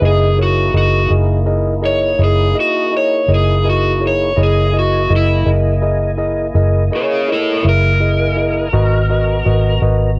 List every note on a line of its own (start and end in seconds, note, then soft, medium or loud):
0.00 0.70 F#1 medium
0.00 4.33 A#3 medium
0.00 4.33 D#4 medium
0.00 4.33 E4 medium
0.00 0.28 E4 medium
0.00 4.33 G#4 medium
0.00 0.29 G#4 soft
0.00 0.29 A#4 medium
0.00 0.29 D#5 medium
0.05 0.39 G#4 medium
0.38 0.65 E4 soft
0.38 0.65 G#4 soft
0.38 0.65 A#4 soft
0.38 0.66 C#5 medium
0.42 0.75 F#4 medium
0.73 1.07 F#1 medium
0.73 1.01 E4 soft
0.73 1.11 F#4 medium
0.73 1.01 G#4 soft
0.73 1.01 A#4 soft
0.73 1.01 D#5 medium
1.10 2.15 F#1 medium
1.10 1.37 E4 soft
1.10 1.38 G#4 soft
1.10 1.38 A#4 soft
1.10 1.38 D#5 medium
1.46 1.73 E4 medium
1.46 1.74 G#4 medium
1.46 1.74 A#4 medium
1.46 1.74 D#5 medium
1.82 2.10 E4 soft
1.82 2.10 G#4 soft
1.82 2.10 A#4 soft
1.82 2.20 C#5 medium
1.82 2.10 D#5 medium
2.19 2.53 F#1 medium
2.19 2.46 E4 soft
2.19 2.46 G#4 soft
2.19 2.47 A#4 soft
2.19 2.47 D#5 medium
2.24 2.57 G#4 medium
2.54 2.82 E4 soft
2.54 2.82 G#4 soft
2.54 2.83 A#4 soft
2.54 2.83 D#5 medium
2.60 2.93 F#4 medium
2.92 3.19 E4 soft
2.92 3.19 G#4 soft
2.92 3.19 A#4 soft
2.92 3.20 D#5 soft
2.97 3.30 C#5 medium
3.28 4.33 F#1 medium
3.28 3.55 E4 soft
3.28 3.56 G#4 soft
3.28 3.56 A#4 soft
3.28 3.56 D#5 medium
3.34 3.67 G#4 medium
3.64 3.92 E4 soft
3.64 3.92 G#4 soft
3.64 3.92 A#4 soft
3.64 3.92 D#5 medium
3.69 4.02 F#4 medium
4.00 4.28 E4 soft
4.00 4.28 G#4 soft
4.00 4.28 A#4 soft
4.00 4.28 C#5 soft
4.07 4.40 C#5 medium
4.36 5.06 F#1 medium
4.36 8.68 A#3 medium
4.36 8.69 E4 medium
4.36 4.65 E4 medium
4.36 4.65 G#4 medium
4.36 4.65 A#4 medium
4.36 8.69 D#5 medium
4.36 4.65 D#5 medium
4.36 8.69 G#5 medium
4.43 4.76 G#4 medium
4.73 5.01 E4 soft
4.73 5.01 G#4 soft
4.73 5.01 A#4 soft
4.73 5.01 D#5 medium
4.79 5.12 F#4 medium
5.10 5.44 F#1 medium
5.10 5.37 E4 soft
5.10 5.37 G#4 soft
5.10 5.37 A#4 soft
5.10 5.37 D#5 soft
5.16 5.48 E4 medium
5.45 6.51 F#1 medium
5.45 5.73 E4 soft
5.45 5.73 G#4 soft
5.45 5.73 A#4 soft
5.45 5.74 D#5 soft
5.81 6.09 E4 medium
5.81 6.10 G#4 medium
5.81 6.09 A#4 medium
5.81 6.10 D#5 medium
6.17 6.46 E4 medium
6.17 6.46 G#4 medium
6.17 6.46 A#4 soft
6.17 6.46 D#5 medium
6.54 6.89 F#1 medium
6.54 6.82 E4 medium
6.54 6.82 G#4 medium
6.54 6.83 A#4 medium
6.54 6.83 D#5 medium
6.91 7.19 E4 soft
6.91 7.19 G#4 soft
6.91 7.19 A#4 soft
6.91 7.19 D#5 medium
6.95 7.30 G#4 medium
6.95 7.29 C#5 medium
7.28 7.55 E4 soft
7.28 7.55 G#4 soft
7.28 7.56 A#4 soft
7.28 7.56 D#5 soft
7.32 7.64 E4 medium
7.32 7.66 A4 medium
7.63 8.69 F#1 medium
7.63 7.91 E4 soft
7.63 7.91 G#4 soft
7.63 7.91 A#4 soft
7.63 7.92 E5 soft
7.69 9.80 A#4 medium
8.00 8.28 E4 soft
8.00 8.28 G#4 soft
8.00 8.28 A#4 soft
8.00 8.28 D#5 soft
8.36 8.64 E4 soft
8.36 8.64 G#4 soft
8.36 8.64 A#4 soft
8.36 8.65 D#5 soft
8.73 9.42 G#1 medium
8.73 10.19 B3 medium
8.73 9.00 F#4 medium
8.73 10.19 F#4 medium
8.73 9.00 A#4 medium
8.73 9.01 B4 medium
8.73 9.01 D#5 medium
8.73 10.19 A#5 medium
9.10 9.37 F#4 medium
9.10 9.37 A#4 soft
9.10 9.37 B4 soft
9.10 9.37 D#5 medium
9.45 9.79 G#1 medium
9.45 9.73 F#4 medium
9.45 9.73 A#4 medium
9.45 9.73 B4 soft
9.45 9.73 D#5 medium
9.82 10.19 G#1 medium
9.82 10.09 F#4 medium
9.82 10.09 A#4 medium
9.82 10.09 B4 medium
9.82 10.10 D#5 medium